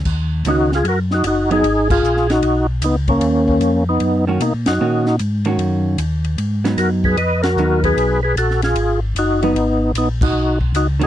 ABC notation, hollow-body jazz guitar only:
X:1
M:4/4
L:1/8
Q:"Swing" 1/4=152
K:Ebm
V:1 name="Hollow-body jazz guitar"
z2 [E,B,DG] z4 [G,CE] | z8 | z4 z [E,B,DG] z2 | [E,B,DG] z2 [E,B,DG]3 z2 |
z [G,CE]3 z2 [G,CE]2- | [G,CE] z6 [G,CE] | z6 z [E,B,DG] |]